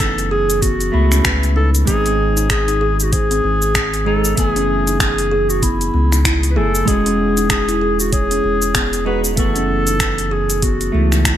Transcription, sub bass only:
0.00 0.90 F#1 medium
0.94 1.21 C#2 loud
1.25 1.84 C#2 loud
1.88 3.40 G#1 loud
3.44 4.34 G#1 medium
4.38 5.90 F#1 medium
5.94 6.58 C#2 medium
6.57 6.83 F#1 loud
6.88 8.40 E1 medium
8.44 9.39 E1 medium
9.38 10.90 F#1 medium
10.94 11.37 C#2 medium

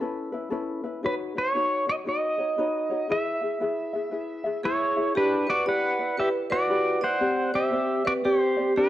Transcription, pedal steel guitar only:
1.06 1.14 B4 medium
1.38 1.85 C#5 medium
1.89 1.94 D#5 medium
2.09 3.13 D#5 medium
3.12 4.61 E5 medium
4.65 5.12 E4 medium
4.65 5.12 C#5 medium
5.17 5.46 D4 medium
5.17 5.49 B4 loud
5.50 5.66 F#4 medium
5.50 5.68 D5 medium
5.68 6.15 B4 medium
5.68 6.20 F#5 loud
6.20 6.28 G4 medium
6.20 6.28 E5 medium
6.52 6.99 F#4 medium
6.52 7.04 D5 loud
7.04 7.50 C5 medium
7.04 7.56 F#5 loud
7.55 8.02 G4 medium
7.55 8.07 E5 medium
8.07 8.12 F#4 medium
8.07 8.12 D5 loud
8.25 8.72 G4 medium
8.25 8.77 C5 medium
8.77 8.89 D4 medium
8.77 8.89 B4 medium

